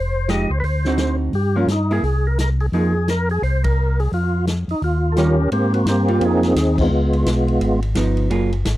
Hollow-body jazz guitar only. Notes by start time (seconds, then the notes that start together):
0.28 F3 G#3 D#4 G4
0.86 D3 C4 D#4 F#4
1.56 F3 A#3 C#4
1.91 A#3 E4 G#4
2.74 F3 A#3 D#4 G#4
5.17 D#3 G3 C#4 F4
6.09 C4 F4
7.96 F3 B3 D#4
8.30 F#3 A#3 F4 G#4